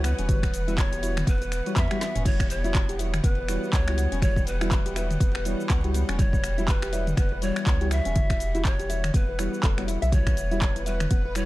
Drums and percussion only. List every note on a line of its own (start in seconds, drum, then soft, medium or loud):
0.04 finger snap medium
0.04 open hi-hat medium
0.04 shaker medium
0.19 closed hi-hat soft
0.19 shaker soft
0.29 kick loud
0.29 closed hi-hat medium
0.29 mid tom medium
0.29 shaker medium
0.43 finger snap medium
0.43 kick medium
0.43 closed hi-hat soft
0.43 shaker soft
0.54 open hi-hat medium
0.54 shaker medium
0.68 closed hi-hat soft
0.68 shaker soft
0.78 finger snap medium
0.78 kick loud
0.78 clap loud
0.78 closed hi-hat medium
0.78 shaker medium
0.93 closed hi-hat soft
0.93 shaker soft
1.03 open hi-hat medium
1.03 shaker medium
1.17 finger snap loud
1.17 closed hi-hat soft
1.17 mid tom medium
1.17 shaker soft
1.27 kick loud
1.27 closed hi-hat medium
1.27 shaker medium
1.42 closed hi-hat soft
1.42 shaker soft
1.52 finger snap medium
1.52 open hi-hat medium
1.52 shaker medium
1.66 closed hi-hat soft
1.66 shaker soft
1.76 kick loud
1.76 clap loud
1.76 closed hi-hat medium
1.76 shaker medium
1.91 finger snap medium
1.91 closed hi-hat soft
1.91 high tom medium
2.01 snare medium
2.01 open hi-hat medium
2.01 shaker medium
2.16 closed hi-hat soft
2.16 mid tom medium
2.16 shaker soft
2.25 kick loud
2.25 closed hi-hat medium
2.25 mid tom medium
2.25 crash medium
2.25 shaker medium
2.40 finger snap loud
2.40 kick medium
2.40 shaker soft
2.50 open hi-hat loud
2.50 shaker medium
2.64 closed hi-hat soft
2.64 shaker soft
2.75 finger snap medium
2.75 kick loud
2.75 clap loud
2.75 closed hi-hat medium
2.75 shaker medium
2.89 closed hi-hat soft
2.89 shaker soft
2.99 open hi-hat medium
2.99 shaker medium
3.14 finger snap loud
3.14 closed hi-hat soft
3.14 mid tom medium
3.14 shaker soft
3.24 kick loud
3.24 closed hi-hat medium
3.24 shaker medium
3.48 finger snap medium
3.48 open hi-hat medium
3.48 shaker medium
3.64 shaker soft
3.73 kick loud
3.73 clap loud
3.73 closed hi-hat medium
3.73 shaker medium
3.88 finger snap medium
3.88 closed hi-hat soft
3.98 open hi-hat medium
3.98 shaker medium
4.12 closed hi-hat soft
4.12 shaker soft
4.22 finger snap medium
4.22 kick loud
4.22 closed hi-hat medium
4.22 mid tom medium
4.22 shaker medium
4.36 kick medium
4.36 shaker soft
4.47 open hi-hat medium
4.47 shaker medium
4.61 finger snap loud
4.61 closed hi-hat soft
4.61 shaker soft
4.71 kick loud
4.71 clap loud
4.71 closed hi-hat medium
4.71 shaker medium
4.86 closed hi-hat soft
4.86 shaker soft
4.96 finger snap medium
4.96 open hi-hat medium
4.96 shaker loud
5.11 closed hi-hat soft
5.11 mid tom loud
5.11 shaker soft
5.20 kick loud
5.20 closed hi-hat medium
5.20 shaker medium
5.35 finger snap loud
5.45 open hi-hat medium
5.45 shaker medium
5.60 shaker soft
5.70 finger snap medium
5.70 kick loud
5.70 clap medium
5.70 closed hi-hat medium
5.70 shaker medium
5.84 closed hi-hat soft
5.94 open hi-hat medium
5.94 shaker loud
6.09 finger snap loud
6.09 closed hi-hat soft
6.09 shaker soft
6.19 kick loud
6.19 closed hi-hat medium
6.19 mid tom medium
6.19 shaker medium
6.33 kick medium
6.33 shaker soft
6.44 finger snap medium
6.44 open hi-hat medium
6.44 shaker loud
6.58 closed hi-hat soft
6.58 shaker soft
6.68 kick loud
6.68 clap loud
6.68 closed hi-hat medium
6.68 shaker medium
6.82 finger snap medium
6.82 closed hi-hat soft
6.82 shaker soft
6.93 open hi-hat medium
6.93 shaker loud
7.07 closed hi-hat soft
7.07 mid tom loud
7.07 shaker soft
7.17 finger snap medium
7.17 kick loud
7.17 closed hi-hat medium
7.17 shaker medium
7.42 open hi-hat medium
7.42 shaker loud
7.56 finger snap loud
7.56 shaker soft
7.66 kick loud
7.66 clap loud
7.66 closed hi-hat medium
7.66 shaker medium
7.81 closed hi-hat soft
7.91 finger snap medium
7.91 open hi-hat medium
7.91 shaker loud
8.05 closed hi-hat soft
8.05 shaker soft
8.16 kick loud
8.16 closed hi-hat medium
8.16 mid tom medium
8.16 shaker medium
8.30 finger snap medium
8.30 kick medium
8.30 closed hi-hat soft
8.30 shaker soft
8.40 open hi-hat medium
8.40 shaker loud
8.55 closed hi-hat soft
8.55 shaker soft
8.65 finger snap medium
8.65 kick loud
8.65 clap loud
8.65 closed hi-hat medium
8.65 shaker medium
8.79 closed hi-hat soft
8.79 shaker soft
8.90 open hi-hat medium
8.90 shaker loud
9.04 finger snap loud
9.04 closed hi-hat soft
9.04 mid tom loud
9.04 shaker soft
9.14 kick loud
9.14 closed hi-hat medium
9.14 shaker medium
9.39 finger snap medium
9.39 open hi-hat medium
9.39 shaker loud
9.54 shaker soft
9.63 kick loud
9.63 clap loud
9.63 closed hi-hat medium
9.63 shaker medium
9.78 finger snap medium
9.78 closed hi-hat soft
9.88 open hi-hat medium
9.88 shaker medium
10.02 closed hi-hat soft
10.02 shaker soft
10.12 kick loud
10.12 closed hi-hat medium
10.12 mid tom medium
10.12 shaker medium
10.27 finger snap medium
10.27 kick medium
10.27 shaker soft
10.37 open hi-hat medium
10.37 shaker medium
10.51 closed hi-hat soft
10.51 shaker soft
10.61 finger snap medium
10.61 kick loud
10.61 clap loud
10.61 closed hi-hat medium
10.61 shaker medium
10.76 closed hi-hat soft
10.76 shaker soft
10.86 open hi-hat medium
10.86 shaker medium
11.00 finger snap medium
11.00 closed hi-hat soft
11.00 mid tom loud
11.00 shaker soft
11.11 kick loud
11.11 closed hi-hat medium
11.11 shaker medium
11.35 finger snap medium
11.35 open hi-hat medium
11.35 shaker medium